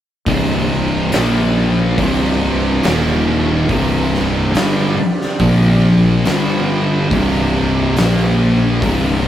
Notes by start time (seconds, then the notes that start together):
0.26 C1 C2 G2 C3, kick, open hi-hat
1.12 A#1 A#2 F3 A#3, snare, open hi-hat
1.98 C1 C2 G2 C3, kick, open hi-hat
2.83 D#1 D#2 A#2 D#3, snare, open hi-hat
3.69 C1 C2 G2 C3 C4 G4 D5, kick, open hi-hat
4.15 snare
4.54 G1 G2 D3 G3, snare, open hi-hat
4.98 muted fingered electric bass stroke, muted distorted electric guitar stroke
5.21 snare
5.39 A#1 A#2 F3 A#3, kick, open hi-hat
6.25 G1 G2 D3 G3 G4, snare, open hi-hat
7.11 C1 C2 G2 C3, kick, open hi-hat
7.97 A#1 A#2 F3 A#3, snare, open hi-hat
8.82 C1 C2 G2 C3, kick, open hi-hat